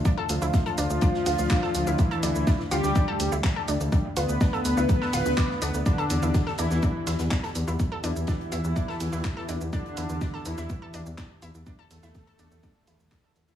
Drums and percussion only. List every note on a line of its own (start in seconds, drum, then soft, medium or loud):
0.05 kick loud
0.05 closed hi-hat medium
0.05 shaker medium
0.29 closed hi-hat medium
0.29 open hi-hat loud
0.29 shaker medium
0.42 shaker medium
0.53 kick loud
0.53 snare loud
0.53 closed hi-hat medium
0.53 shaker medium
0.66 closed hi-hat soft
0.78 closed hi-hat medium
0.78 open hi-hat loud
0.78 shaker medium
0.90 shaker medium
1.01 kick loud
1.01 closed hi-hat medium
1.01 shaker medium
1.14 snare medium
1.26 open hi-hat loud
1.26 open hi-hat medium
1.26 shaker medium
1.39 shaker medium
1.50 kick loud
1.50 snare loud
1.50 clap loud
1.50 shaker medium
1.63 snare medium
1.74 snare soft
1.74 closed hi-hat medium
1.74 open hi-hat loud
1.74 shaker medium
1.87 shaker medium
1.98 kick loud
1.98 closed hi-hat medium
1.98 shaker medium
2.11 closed hi-hat soft
2.23 closed hi-hat medium
2.23 open hi-hat loud
2.23 shaker medium
2.35 shaker medium
2.47 kick loud
2.47 snare loud
2.47 closed hi-hat medium
2.47 shaker medium
2.60 snare medium
2.71 closed hi-hat medium
2.71 open hi-hat loud
2.71 shaker medium
2.84 snare soft
2.84 shaker medium
2.95 kick loud
2.95 closed hi-hat medium
2.95 shaker medium
3.20 closed hi-hat medium
3.20 open hi-hat loud
3.20 shaker medium
3.32 shaker medium
3.44 kick loud
3.44 snare loud
3.44 clap loud
3.44 closed hi-hat loud
3.44 shaker medium
3.68 closed hi-hat medium
3.68 open hi-hat loud
3.68 shaker medium
3.80 closed hi-hat soft
3.80 shaker medium
3.92 kick loud
3.92 closed hi-hat loud
3.92 shaker medium
4.17 closed hi-hat medium
4.17 open hi-hat loud
4.17 shaker medium
4.29 shaker medium
4.41 kick loud
4.41 snare loud
4.41 closed hi-hat medium
4.41 shaker medium
4.54 closed hi-hat soft
4.65 closed hi-hat medium
4.65 open hi-hat loud
4.65 shaker medium
4.77 shaker medium
4.89 kick loud
4.89 closed hi-hat medium
4.89 shaker medium
5.02 snare medium
5.13 open hi-hat medium
5.13 open hi-hat loud
5.13 shaker medium
5.26 shaker medium
5.37 kick loud
5.37 snare loud
5.37 clap loud
5.37 closed hi-hat loud
5.37 shaker medium
5.50 snare medium
5.62 snare soft
5.62 closed hi-hat medium
5.62 open hi-hat loud
5.62 shaker medium
5.74 shaker medium
5.86 kick loud
5.86 closed hi-hat loud
5.86 shaker medium
5.98 closed hi-hat soft
6.10 closed hi-hat medium
6.10 open hi-hat loud
6.10 shaker medium
6.22 shaker medium
6.34 kick loud
6.34 snare loud
6.34 closed hi-hat medium
6.34 shaker medium
6.47 snare medium
6.58 closed hi-hat medium
6.58 open hi-hat medium
6.58 shaker medium
6.71 snare medium
6.71 shaker medium
6.83 kick loud
6.83 closed hi-hat medium
6.83 shaker medium
7.07 snare loud
7.07 closed hi-hat medium
7.07 open hi-hat loud
7.07 shaker medium
7.19 snare loud
7.19 closed hi-hat medium
7.19 shaker medium
7.31 kick loud
7.31 snare loud
7.31 clap loud
7.31 closed hi-hat medium
7.31 shaker medium
7.43 snare loud
7.43 closed hi-hat medium
7.55 closed hi-hat medium
7.55 open hi-hat medium
7.55 shaker medium
7.68 closed hi-hat soft
7.68 shaker medium
7.80 kick loud
7.80 closed hi-hat medium
7.80 shaker medium
8.04 closed hi-hat medium
8.04 open hi-hat loud
8.04 shaker medium
8.16 shaker medium
8.27 kick loud
8.27 snare loud
8.27 closed hi-hat medium
8.27 shaker medium
8.41 closed hi-hat soft
8.52 closed hi-hat medium
8.52 open hi-hat medium
8.52 shaker medium
8.64 shaker medium
8.76 kick loud
8.76 closed hi-hat medium
8.76 shaker medium
8.89 snare medium
9.00 open hi-hat medium
9.00 open hi-hat loud
9.00 shaker medium
9.13 shaker medium
9.24 kick loud
9.24 snare loud
9.24 clap loud
9.24 closed hi-hat medium
9.24 shaker medium
9.37 snare soft
9.48 snare soft
9.48 closed hi-hat medium
9.48 open hi-hat medium
9.48 shaker medium
9.61 shaker medium
9.73 kick loud
9.73 closed hi-hat loud
9.73 shaker medium
9.86 closed hi-hat soft
9.97 closed hi-hat medium
9.97 open hi-hat loud
9.97 shaker medium
10.09 shaker medium
10.21 kick loud
10.21 snare loud
10.21 closed hi-hat medium
10.21 shaker medium
10.34 snare soft
10.45 closed hi-hat medium
10.45 open hi-hat medium
10.45 shaker medium
10.58 snare medium
10.58 shaker medium
10.70 kick loud
10.70 closed hi-hat medium
10.70 shaker medium
10.94 closed hi-hat medium
10.94 open hi-hat loud
10.94 shaker medium
11.06 shaker medium
11.18 kick loud
11.18 snare loud
11.18 clap loud
11.18 closed hi-hat medium
11.18 shaker medium
11.42 closed hi-hat medium
11.42 open hi-hat medium
11.42 shaker medium
11.55 closed hi-hat soft
11.55 shaker medium
11.66 kick loud
11.66 closed hi-hat medium
11.66 shaker medium
11.90 snare loud
11.90 closed hi-hat medium
11.90 open hi-hat loud
11.90 shaker medium
12.03 snare loud
12.03 closed hi-hat medium
12.03 shaker medium
12.15 kick loud
12.15 snare loud
12.15 closed hi-hat loud
12.15 shaker medium
12.27 closed hi-hat soft
12.39 closed hi-hat medium
12.39 open hi-hat medium
12.39 shaker medium
12.51 shaker medium
12.63 kick loud
12.63 closed hi-hat medium
12.63 shaker medium
12.87 closed hi-hat medium
12.87 open hi-hat loud
12.87 shaker medium
13.00 shaker medium
13.12 kick loud
13.12 snare loud
13.12 clap loud
13.12 closed hi-hat medium
13.12 shaker medium
13.35 snare loud
13.35 closed hi-hat medium
13.35 open hi-hat medium
13.35 shaker medium
13.48 snare loud
13.48 closed hi-hat medium
13.48 shaker medium